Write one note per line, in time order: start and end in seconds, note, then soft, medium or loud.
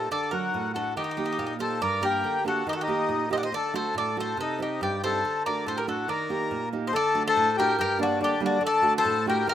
0.11 0.52 D3 medium
0.11 0.31 A4 medium
0.11 0.31 D5 loud
0.31 0.66 F#3 soft
0.31 0.66 D4 soft
0.31 0.72 F#4 medium
0.31 0.66 F#4 medium
0.31 0.71 A#4 medium
0.54 0.95 A2 medium
0.73 0.92 A3 soft
0.73 0.93 D4 soft
0.73 0.94 F#4 medium
0.73 0.92 F#4 medium
0.73 0.95 A4 medium
0.97 1.38 D#3 medium
0.97 1.57 D#4 medium
0.97 1.03 G4 medium
1.04 1.10 G4 medium
1.11 1.16 G4 medium
1.17 1.52 A#3 soft
1.17 1.52 D#4 soft
1.17 1.24 G4 medium
1.17 1.52 G4 medium
1.26 1.31 G4 medium
1.33 1.38 G4 medium
1.39 1.80 A#2 medium
1.39 1.45 G4 medium
1.46 1.53 G4 medium
1.59 1.77 A#3 soft
1.59 1.77 D#4 soft
1.59 1.77 G4 medium
1.59 1.81 A4 medium
1.59 1.81 C5 medium
1.81 2.23 G2 medium
1.81 2.02 A#4 medium
1.81 2.04 D5 loud
2.01 2.36 A#3 soft
2.01 2.37 D4 soft
2.01 2.37 G4 medium
2.01 2.44 G4 medium
2.01 2.47 A#4 medium
2.24 2.66 D3 medium
2.44 2.62 A#3 medium
2.44 2.62 D4 soft
2.44 2.67 F#4 medium
2.44 2.63 G4 medium
2.44 2.67 A4 medium
2.67 3.09 D#3 medium
2.67 2.74 D#4 medium
2.67 2.73 G4 medium
2.73 2.82 F#4 medium
2.73 2.80 A4 medium
2.81 3.29 D#4 medium
2.81 3.28 G4 medium
2.87 3.23 A#3 soft
2.87 3.23 D#4 soft
2.87 3.23 G4 medium
3.09 3.51 A#2 medium
3.30 3.48 A#3 soft
3.30 3.48 D#4 soft
3.30 3.48 G4 medium
3.30 3.38 C5 medium
3.30 3.37 D#5 medium
3.38 3.43 D5 medium
3.38 3.43 F#5 medium
3.43 3.54 C5 medium
3.43 3.53 D#5 medium
3.52 3.94 D3 medium
3.52 3.74 A4 medium
3.52 3.75 D5 loud
3.74 4.08 A3 soft
3.74 4.08 D4 soft
3.74 4.09 F#4 medium
3.74 3.96 A4 medium
3.74 3.95 C5 medium
3.95 4.37 A2 medium
3.95 4.17 A4 medium
3.95 4.17 D5 medium
4.17 4.34 A3 soft
4.17 4.34 D4 soft
4.17 4.34 F#4 medium
4.17 4.38 A4 medium
4.17 4.39 C5 medium
4.37 4.79 C3 medium
4.37 4.60 D#4 medium
4.37 4.62 A4 medium
4.58 4.93 C4 soft
4.58 4.93 D#4 soft
4.58 4.81 D#4 medium
4.58 4.94 G4 medium
4.62 4.81 G4 medium
4.81 5.22 G2 medium
4.81 5.02 G4 medium
4.81 5.03 D5 medium
5.03 5.20 C4 soft
5.03 5.20 D#4 soft
5.03 5.20 G4 medium
5.03 5.43 A4 medium
5.03 5.46 C5 medium
5.25 5.66 D3 medium
5.45 5.80 A3 soft
5.45 5.80 D4 soft
5.45 5.80 F#4 medium
5.45 5.65 A#4 medium
5.45 5.66 D5 medium
5.66 6.08 A2 medium
5.66 5.76 A4 medium
5.66 5.78 C5 medium
5.76 5.87 G4 medium
5.76 5.88 A#4 medium
5.87 6.04 A3 soft
5.87 6.05 D4 soft
5.87 6.05 F#4 medium
5.87 6.08 F#4 medium
5.87 6.10 A4 medium
6.08 6.50 D#3 medium
6.08 6.69 A#4 medium
6.08 6.69 D5 medium
6.29 6.64 A#3 soft
6.29 6.64 D#4 soft
6.29 6.64 G4 medium
6.51 6.92 A#2 medium
6.73 6.90 A#3 soft
6.73 6.90 D#4 soft
6.73 6.90 G4 medium
6.87 6.94 C5 medium
6.87 6.94 D#5 medium
6.93 7.34 D3 medium
6.93 7.23 A4 medium
6.93 7.27 D5 loud
7.14 7.49 A3 soft
7.14 7.49 D4 soft
7.14 7.49 F#4 medium
7.28 7.56 A4 medium
7.28 7.59 C5 loud
7.36 7.77 A2 medium
7.57 7.75 A3 medium
7.57 7.75 D4 medium
7.57 7.75 F#4 medium
7.57 7.77 G4 medium
7.57 7.78 A#4 medium
7.78 8.19 G2 medium
7.78 7.98 G4 medium
7.78 7.99 A#4 loud
7.99 8.33 G3 soft
7.99 8.33 A#3 soft
7.99 8.33 D4 medium
7.99 8.20 D4 medium
8.03 8.21 F#4 medium
8.21 8.60 D3 medium
8.21 8.41 D4 medium
8.21 8.44 G4 medium
8.40 8.58 G3 medium
8.40 8.58 A#3 medium
8.40 8.59 D4 medium
8.45 8.63 D4 medium
8.45 8.63 F#4 medium
8.61 9.03 D3 medium
8.65 8.94 A4 loud
8.65 8.94 D5 loud
8.82 9.16 A3 medium
8.82 9.17 D4 soft
8.82 9.17 F#4 medium
8.98 9.26 A4 medium
8.98 9.26 C5 loud
9.05 9.46 A2 medium
9.26 9.43 A3 medium
9.26 9.43 D4 medium
9.26 9.43 F#4 medium
9.26 9.47 G4 medium
9.26 9.47 A#4 medium
9.47 9.54 D#3 medium
9.47 9.54 A#4 loud